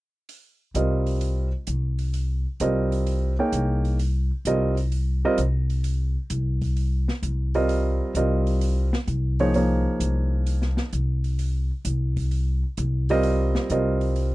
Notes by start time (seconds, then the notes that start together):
0.29 open hi-hat
0.74 C2 G3 C4 F4 A#4 D#5, closed hi-hat
1.06 open hi-hat
1.21 open hi-hat
1.67 C2, closed hi-hat
1.99 open hi-hat
2.14 open hi-hat
2.60 C2 G3 C4 F4 A#4 D#5, closed hi-hat
2.92 open hi-hat
3.06 open hi-hat
3.39 A#3 D#4 G#4 C#5 G5
3.52 C2, closed hi-hat
3.85 open hi-hat
3.99 open hi-hat
4.45 C2 G3 C4 F4 A#4 D#5, closed hi-hat
4.77 open hi-hat
4.92 open hi-hat
5.25 G3 C4 F4 A#4 D#5
5.38 C2, closed hi-hat
5.70 open hi-hat
5.84 open hi-hat
6.30 C2, closed hi-hat
6.62 kick, open hi-hat
6.77 open hi-hat
7.08 snare
7.22 C2, closed hi-hat
7.54 G3 C4 F4 A#4 D#5, open hi-hat
7.69 open hi-hat
8.15 C2 G3 C4 F4 A#4 D#5, closed hi-hat
8.47 open hi-hat
8.61 open hi-hat
8.93 snare
9.07 C2, closed hi-hat
9.39 F3 A#3 D#4 G#4 C#5, open hi-hat
9.54 F3 A#3 D#4 G#4 C#5, open hi-hat
10.00 C2, closed hi-hat
10.46 open hi-hat
10.62 snare
10.77 snare
10.93 C2, closed hi-hat
11.24 open hi-hat
11.39 open hi-hat
11.85 C2, closed hi-hat
12.17 kick, open hi-hat
12.31 open hi-hat
12.77 C2, closed hi-hat
13.09 G3 C4 F4 A#4 D#5, open hi-hat
13.23 open hi-hat
13.55 snare
13.70 C2 G3 C4 F4 A#4 D#5, closed hi-hat
14.01 open hi-hat
14.16 open hi-hat